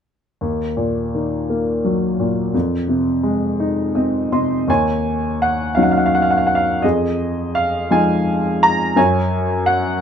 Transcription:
0.41 D#2
0.77 A#2
1.15 D#3
1.50 A#3
1.84 F#3
2.20 A#2
2.54 F2
2.88 C3
3.23 G#3
3.60 D#4
3.95 C4 D#5
4.32 C3 D#5 C6
4.68 D#2 C#5 G#5
5.42 F#5
5.75 F#3 C#4 D#4 F5
5.83 F#5
5.91 F5
5.98 F#5
6.06 F5
6.15 F#5
6.22 F5
6.31 F#5
6.38 F5
6.47 F#5
6.55 F5
6.82 F2 G#4 D#5
7.55 F5
7.91 F3 G#3 D#4 G#5
8.63 A#5
8.96 F#2 C#5 G#5
9.66 F#5

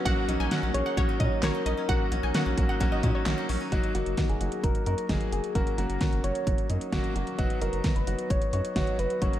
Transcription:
Already playing: C#4 D#4
0.05 A#1 F#3 A#3 C#4 F#4 F#5, kick, closed hi-hat
0.29 A#1 F#3 A#3 C#4 D#4, closed hi-hat
0.40 A#1 D#4 G#5
0.51 F#3 A#3 C#4 F#4 F#5, snare, closed hi-hat
0.63 A#1 C#4
0.74 A#1 F#3 A#3 C#4 G#4 C#5, closed hi-hat
0.86 D#4 F#5
0.97 A#1 F#3 A#3 C#4 F#4 C#5, kick, closed hi-hat
1.09 D#4
1.20 A#2 F#3 A#3 C#4 F#4 D#5, kick, closed hi-hat
1.43 A#1 F#3 A#3 C#4 F#4 A#4 C#5, snare, clap, closed hi-hat
1.55 D#4
1.66 A#1 F#3 A#3 C#4 D#4 A#4 D#5, closed hi-hat
1.77 C#4
1.89 A#1 F#3 A#3 C#4 F#4 F#5, kick, closed hi-hat
2.12 A#1 F#3 A#3 C#4 F#4, closed hi-hat
2.23 A#1 D#4 G#5
2.34 F#3 A#3 C#4 F#4 F#5, snare, closed hi-hat
2.46 A#1 C#4
2.58 A#1 F#3 A#3 C#4 F#4, kick, closed hi-hat
2.69 D#4 F#5
2.80 A#1 F#3 A#3 C#4 F#4, kick, closed hi-hat
2.92 D#4 D#5
3.03 A#2 F#3 A#3 C#4 F#4, kick, closed hi-hat
3.15 C#5
3.26 A#1 F#3 A#3 C#4 F#4, snare, clap, closed hi-hat
3.38 D#4
3.49 A#1 F#3 A#3 C#4 F#4, open hi-hat
3.61 C#4
3.72 F#1 F#3 A#3 D#4 F#4, kick, closed hi-hat
3.84 closed hi-hat
3.95 F#1 F#3 A#3 D#4 F#4, closed hi-hat
4.06 F#1, closed hi-hat
4.17 F#3 A#3 D#4 F#4, kick, snare, closed hi-hat
4.29 F#1 G#4, closed hi-hat
4.41 F#1 F#3 A#3 D#4 F#4, closed hi-hat
4.52 closed hi-hat
4.64 F#1 F#3 A#3 D#4 F#4 A#4, kick, closed hi-hat
4.75 closed hi-hat
4.86 F#2 F#3 A#3 D#4 F#4 A#4, closed hi-hat
4.98 closed hi-hat
5.09 F#1 F#3 A#3 D#4 G#4, kick, snare, closed hi-hat
5.21 closed hi-hat
5.32 F#1 F#3 A#3 D#4 F#4 G#4, closed hi-hat
5.44 closed hi-hat
5.55 F#1 F#3 A#3 C#4 F#4 A#4, kick, closed hi-hat
5.67 closed hi-hat
5.78 F#1 F#3 A#3 C#4 F#4 A#4, closed hi-hat
5.90 F#1, closed hi-hat
6.01 F#3 A#3 C#4 F#4, kick, snare, closed hi-hat
6.13 F#1, closed hi-hat
6.24 F#1 F#3 A#3 C#4 F#4 C#5, closed hi-hat
6.35 closed hi-hat
6.47 F#1 F#3 A#3 C#4 F#4, kick, closed hi-hat
6.58 closed hi-hat
6.70 F#2 F#3 A#3 C#4 D#4, closed hi-hat
6.81 closed hi-hat
6.92 F#1 F#3 A#3 C#4 F#4, kick, snare, closed hi-hat
7.04 closed hi-hat
7.16 F#1 F#3 A#3 C#4 F#4, closed hi-hat
7.27 closed hi-hat
7.39 F#1 F#3 B3 D#4 F#4, kick, closed hi-hat
7.50 closed hi-hat
7.61 F#1 F#3 B3 D#4 F#4 A#4, closed hi-hat
7.73 F#1, closed hi-hat
7.84 F#3 B3 D#4 F#4, kick, snare, closed hi-hat
7.96 F#1 B4, closed hi-hat
8.07 F#1 F#3 B3 D#4 F#4, closed hi-hat
8.19 closed hi-hat
8.30 F#1 F#3 B3 D#4 F#4 C#5, kick, closed hi-hat
8.42 closed hi-hat
8.53 F#2 F#3 B3 D#4 F#4 C#5, closed hi-hat
8.65 closed hi-hat
8.76 F#1 F#3 B3 D#4 F#4, kick, snare, closed hi-hat
8.87 closed hi-hat
8.99 F#1 F#3 B3 D#4 F#4 B4, closed hi-hat
9.10 closed hi-hat
9.22 F#1 F#3 A#3 C#4 F#4 C#5, kick, closed hi-hat
9.33 closed hi-hat

